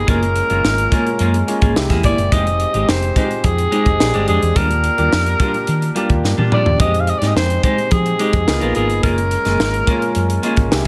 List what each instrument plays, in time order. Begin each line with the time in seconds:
Already playing: grand piano A#3
0.07 fingered electric bass F#1, grand piano G#3 A#3 C#4 F4, clean electric guitar A#3 F4 G#4, alto saxophone A#4, kick, closed hi-hat
0.21 muted clean electric guitar stroke, closed hi-hat
0.35 muted clean electric guitar stroke, closed hi-hat
0.50 fingered electric bass F#1, grand piano G#3 A#3 C#4 F4, clean electric guitar A#3 F4 G#4, closed hi-hat
0.64 fingered electric bass G#1, muted clean electric guitar stroke, snare
0.78 muted clean electric guitar stroke, closed hi-hat
0.91 grand piano G#3 A#3 C#4 F4, clean electric guitar A#3 F4 G#4, kick, closed hi-hat
1.06 muted clean electric guitar stroke, closed hi-hat
1.19 fingered electric bass F#2, clean electric guitar A#3 F4 G#4, closed hi-hat
1.34 muted clean electric guitar stroke, closed hi-hat
1.47 grand piano G#3 A#3 C#4 F4, muted clean electric guitar stroke, closed hi-hat
1.62 fingered electric bass G#1, clean electric guitar A#3 F4 G#4, kick, closed hi-hat
1.75 fingered electric bass C2, grand piano G#3 A#3 E4 G4, muted clean electric guitar stroke, snare
1.89 fingered electric bass E2, grand piano G#3 A#3 E4 G4, clean electric guitar A#3 E4 G#4, kick, snare, closed hi-hat
2.03 fingered electric bass G1, clean electric guitar A#3 E4 G#4, alto saxophone D5, kick, closed hi-hat
2.18 fingered electric bass F#1, muted clean electric guitar stroke, closed hi-hat
2.31 fingered electric bass F1, grand piano G#3 C4 D#4 G4, clean electric guitar G#3 D#4 G4, alto saxophone D#5, kick, closed hi-hat
2.46 muted clean electric guitar stroke, closed hi-hat
2.60 muted clean electric guitar stroke, closed hi-hat
2.73 fingered electric bass G#1, grand piano G#3 C4 D#4 G4, clean electric guitar G#3 D#4 G4, closed hi-hat
2.88 fingered electric bass F1, alto saxophone C5, muted clean electric guitar stroke, snare
3.02 muted clean electric guitar stroke, closed hi-hat
3.15 grand piano G#3 C4 D#4 F4, clean electric guitar G#3 D#4 G4, alto saxophone C5, kick, closed hi-hat
3.23 grand piano G4
3.30 muted clean electric guitar stroke, closed hi-hat
3.44 fingered electric bass F2, alto saxophone G#4, kick, closed hi-hat
3.58 muted clean electric guitar stroke, closed hi-hat
3.71 clean electric guitar G#3 D#4 G4, grand piano G#3 C4 D#4 G4, closed hi-hat
3.85 fingered electric bass F1, muted clean electric guitar stroke, kick, closed hi-hat
3.99 fingered electric bass A#1, grand piano G#3 C4 D4 G4, muted clean electric guitar stroke, snare
4.13 fingered electric bass G1, grand piano G#3 C4 D4 G4, clean electric guitar G#3 D4 G4, closed hi-hat
4.28 fingered electric bass F2, clean electric guitar G#3 D4 G4, alto saxophone G#4, closed hi-hat
4.42 fingered electric bass E2, muted clean electric guitar stroke, closed hi-hat
4.55 fingered electric bass D#2, clean electric guitar G3 D4 F4, grand piano A#3 D4 F4 G4, alto saxophone A#4, kick, closed hi-hat
4.69 muted clean electric guitar stroke, closed hi-hat
4.83 muted clean electric guitar stroke, closed hi-hat
4.97 fingered electric bass D#2, clean electric guitar G3 D4 F4, grand piano A#3 D4 F4 G4, closed hi-hat
5.13 fingered electric bass F2, snare
5.26 muted clean electric guitar stroke, closed hi-hat
5.39 clean electric guitar G3 D4 F4, grand piano A#3 D4 F4 G4, kick, closed hi-hat
5.54 muted clean electric guitar stroke, closed hi-hat
5.67 fingered electric bass D#3, closed hi-hat
5.81 muted clean electric guitar stroke, closed hi-hat
5.95 clean electric guitar G3 D4 F4, grand piano A#3 D4 F4 G4, closed hi-hat
6.09 fingered electric bass D#2, muted clean electric guitar stroke, kick, closed hi-hat
6.24 fingered electric bass G2, muted clean electric guitar stroke, snare
6.37 fingered electric bass A#2, clean electric guitar G3 D4 F4, grand piano A#3 D4 F4 G4, high tom
6.51 clean electric guitar G3 D4 F4, alto saxophone D5, mid tom
6.65 fingered electric bass D#2, muted clean electric guitar stroke, floor tom
6.79 fingered electric bass F2, grand piano G#3 C4 D#4 G4, clean electric guitar G#3 D#4 G4, alto saxophone D#5, kick, closed hi-hat
6.93 muted clean electric guitar stroke, closed hi-hat
7.00 alto saxophone F5
7.07 alto saxophone D#5, muted clean electric guitar stroke, closed hi-hat
7.18 fingered electric bass G#2, grand piano G#3 C4 D#4 G4, clean electric guitar G#3 D#4 G4, alto saxophone D5, snare, closed hi-hat
7.28 alto saxophone D#5
7.36 fingered electric bass F2, alto saxophone C5, muted clean electric guitar stroke, snare
7.50 muted clean electric guitar stroke, closed hi-hat
7.63 grand piano G#3 C4 D#4 G4, clean electric guitar G#3 D#4 G4, alto saxophone C5, kick, closed hi-hat
7.77 muted clean electric guitar stroke, closed hi-hat
7.91 fingered electric bass F3, alto saxophone G#4, kick, closed hi-hat
8.05 muted clean electric guitar stroke, closed hi-hat
8.19 grand piano G#3 C4 D#4 G4, clean electric guitar G#3 D#4 G4, closed hi-hat
8.33 fingered electric bass F2, muted clean electric guitar stroke, kick, closed hi-hat
8.47 fingered electric bass C#2, grand piano A#3 B3 D#4 F4, muted clean electric guitar stroke, snare
8.61 fingered electric bass A#1, grand piano A#3 B3 D#4 F4, clean electric guitar B3 F4 A#4, closed hi-hat
8.75 fingered electric bass G#1, clean electric guitar B3 F4 A#4, alto saxophone G#4, closed hi-hat
8.89 fingered electric bass G1, muted clean electric guitar stroke, closed hi-hat
9.02 fingered electric bass F#1, grand piano G#3 A#3 C#4 F4, clean electric guitar A#3 F4 G#4, alto saxophone A#4, kick, closed hi-hat
9.17 muted clean electric guitar stroke, closed hi-hat
9.31 muted clean electric guitar stroke, closed hi-hat
9.44 fingered electric bass F#1, grand piano G#3 A#3 C#4 F4, clean electric guitar A#3 F4 G#4, snare, closed hi-hat
9.59 fingered electric bass G#1, muted clean electric guitar stroke, snare
9.73 muted clean electric guitar stroke, closed hi-hat
9.87 grand piano G#3 A#3 C#4 F4, clean electric guitar A#3 F4 G#4, kick, closed hi-hat
10.01 muted clean electric guitar stroke, closed hi-hat
10.15 fingered electric bass F#2, closed hi-hat
10.29 muted clean electric guitar stroke, closed hi-hat
10.43 grand piano G#3 A#3 C#4 F4, clean electric guitar A#3 F4 G#4, closed hi-hat
10.57 fingered electric bass G#1, muted clean electric guitar stroke, kick, closed hi-hat
10.71 fingered electric bass C2, grand piano G#3 A#3 E4 G4, muted clean electric guitar stroke, snare